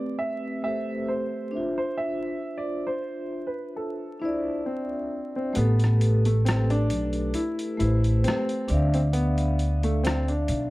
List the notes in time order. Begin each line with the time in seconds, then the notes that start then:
Already playing: A3 C4 G4 B4 D5
0.19 E5
0.62 A3 G4 A4 E5
0.68 C5
1.08 C5
1.51 D4 C5 E5
1.57 F4
1.78 C5
1.97 E5
2.58 D5
2.87 C5
3.47 B4
3.76 A4
4.20 D4 E4 C5 E5
4.25 D5
4.66 C4
5.36 C4
5.53 A1 A3 B3 G4 B4, closed hi-hat
5.58 A4
5.80 closed hi-hat
5.84 cross-stick
6.01 closed hi-hat
6.25 A3, closed hi-hat
6.45 C4, cross-stick, closed hi-hat
6.70 D4, closed hi-hat
6.90 B1, closed hi-hat
7.13 closed hi-hat
7.34 E4, closed hi-hat
7.59 closed hi-hat
7.77 A1 A3 E4 G4 B4, closed hi-hat
7.83 C5
8.04 closed hi-hat
8.24 C4, cross-stick, closed hi-hat
8.49 closed hi-hat
8.68 D2 D4 D5 E5, closed hi-hat
8.74 F5
8.88 D4
8.94 C4, closed hi-hat
9.13 B3, closed hi-hat
9.38 closed hi-hat
9.59 closed hi-hat
9.83 A3, closed hi-hat
10.03 C4, cross-stick, closed hi-hat
10.28 D4, closed hi-hat
10.48 B1, closed hi-hat